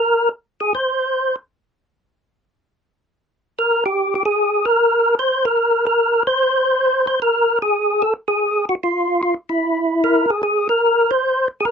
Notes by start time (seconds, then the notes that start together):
Already playing: A#4
0.60 G#4
0.75 C5
3.59 A#4
3.86 G4
4.15 G4
4.25 G#4
4.65 A#4
5.19 C5
5.45 A#4
5.87 A#4
6.27 C5
7.07 C5
7.22 A#4
7.62 G#4
8.02 A4
8.28 G#4
8.69 F#4
8.83 F4
9.23 F4
9.49 E4
10.04 A#4
10.30 G#4
10.43 G#4
10.69 A#4
11.11 C5
11.61 G#4
11.65 A#4